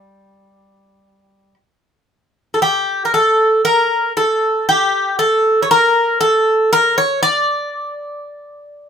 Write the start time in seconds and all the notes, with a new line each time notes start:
Already playing: G3
2.54 A4
2.62 G4
3.05 A#4
3.14 A4
3.65 A#4
4.17 A4
4.69 G4
5.19 A4
5.63 C#5
5.71 A#4
6.21 A4
6.73 A#4
6.98 C#5
7.23 D5